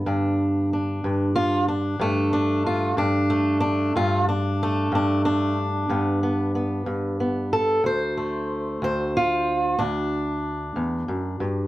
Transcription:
Already playing: D3 B3
0.06 G2 D4
0.73 D4
1.04 G2
1.35 F4
1.68 D4
1.99 G2 A3
2.33 D4
2.66 F4
2.97 G2 D4
3.30 A3
3.60 D4
3.96 G2 F4
4.29 D4
4.63 A3
4.92 G2 D4
5.25 D4
5.89 G2 B3
6.23 B3
6.55 B3
6.86 G2
7.20 B3
7.53 A4
7.84 D2 C5
8.17 A3
8.82 D2 C5
9.17 F4
9.79 D2 D4
10.76 E2
11.08 F#2
11.40 G2

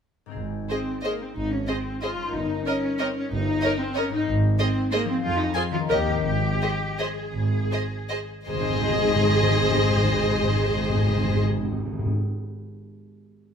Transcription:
0.26 G#2 C4 D#4
0.31 G#4
0.36 G#1 G#2
0.69 C4 G#4 C5 D#5
1.03 A#3 G#4 C5 D#5
1.20 C4
1.35 G#1 D#4
1.50 C#4
1.67 C4 G#4 C5 D#5
2.02 F4 G#4 C5 D#5
2.15 G2
2.20 C#4
2.24 D#4
2.29 A#4
2.34 G1 D#4
2.65 C#4 A#4 C#5 D#5
2.99 C4 A#4 C#5 D#5
3.16 C#4
3.31 G1 D#4
3.62 A#4 C#5 D#5
3.80 C4
3.93 C#4 C#5 D#5
3.97 A#4
4.09 G#2 D#4
4.14 C4
4.18 D#4
4.23 C5
4.28 G#1
4.59 C4 G#4 C5 D#5
4.91 A#3 G#4 C5 D#5
5.05 F3 C4
5.09 C4
5.13 G#4
5.19 C5
5.23 F2 F4
5.39 D#4
5.55 F4 G#4 C5 G#5
5.71 D#3 F4
5.76 C#4
5.80 A#4
5.85 D#5
5.89 D#2 G4 A#4 C#5 D#5
6.06 G#2
6.11 C4
6.15 C5
6.19 D#5
6.24 G#1 G#2 G4
6.61 G#4 C5 D#5
6.98 G#4 C5 D#5
7.34 G#1
7.71 G#4 C5 D#5
8.10 G#4 C5 D#5
8.46 G#1 G#2 G#4 C5 D#5
8.54 G#2 G#3
8.61 G#2 C4
8.68 G#2 C5
8.75 G#2 D#5
8.82 G#2 C6
8.89 G#2
8.96 G#2
9.02 G#2
9.09 G#2
9.16 G#2
9.23 G#2
9.29 G#2
9.37 G#2
9.43 G#2
9.49 G#2
9.56 G#2
9.63 G#2
9.70 G#2
9.76 G#2
9.83 G#2
9.90 G#2
9.97 G#2
10.03 G#2
10.10 G#2
10.17 G#2
10.23 G#2
10.29 G#2
10.36 G#2
10.43 G#2
10.49 G#2
10.55 G#2
10.63 G#2
10.69 G#2
10.76 G#2
10.83 G#2
10.90 G#2
10.96 G#2
11.03 G#2
11.10 G#2
11.16 G#2
11.23 G#2
11.30 G#2
11.36 G#2
11.44 G#2
11.51 G#2
11.58 G#2
11.65 G#2
11.71 G#2
11.78 G#2
11.85 G#2
11.92 G#2
11.99 G#2
12.06 G#2

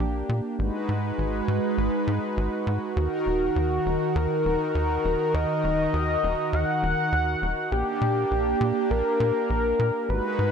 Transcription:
Already playing: A#3 D4 G4
0.00 A#1
0.29 A#2
0.59 G#1 G#3 D#4 F#4 B4
0.89 G#2
1.18 G#1
1.48 G#2
1.78 G#1
2.07 G#2
2.37 G#1
2.67 G#2
2.96 D#2 D#3 D#4 F#4 A#4
3.26 D#1
3.56 D#2
3.86 D#1
4.15 D#2 A#4
4.45 D#1
4.75 D#2
5.04 D#1
5.34 D#2 D#5
5.64 D#1
5.93 D#2
6.23 D#1
6.53 D#2 F#5
6.83 D#1
7.12 D#2
7.42 D#1
7.72 A#1 A#3 D4 G4
8.01 A#2
8.31 A#1
8.61 A#2
8.90 A#1 A#4
9.20 A#2
9.50 A#1
9.79 A#2
10.09 G#1 G#3 D#4 F#4 B4
10.39 G#2

